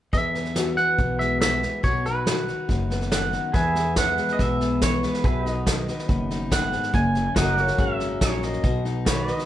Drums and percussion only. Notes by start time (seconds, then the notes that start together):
0.13 kick, snare
0.35 snare
0.45 snare
0.56 snare, hi-hat pedal
0.78 snare
0.99 kick, snare
1.20 snare
1.41 snare, hi-hat pedal
1.63 snare
1.84 kick, snare
2.06 snare
2.27 snare, hi-hat pedal
2.48 snare
2.69 kick, snare
2.91 snare
3.01 snare
3.12 snare, hi-hat pedal
3.33 snare
3.54 kick, snare
3.75 snare
3.96 kick, snare, hi-hat pedal
4.18 snare
4.28 snare
4.39 kick, snare
4.61 snare
4.82 kick, snare, hi-hat pedal
5.03 snare
5.14 snare
5.24 kick, snare
5.46 snare
5.67 kick, snare, hi-hat pedal
5.88 snare
5.99 snare
6.09 kick, snare
6.31 snare
6.52 kick, snare, hi-hat pedal
6.73 snare
6.83 snare
6.94 kick, snare
7.15 snare
7.36 kick, snare, hi-hat pedal
7.57 snare
7.67 snare
7.78 kick, snare
8.00 snare
8.21 kick, snare, hi-hat pedal
8.43 snare
8.53 snare
8.64 kick, snare
8.85 snare
9.06 kick, snare, hi-hat pedal
9.28 snare
9.38 snare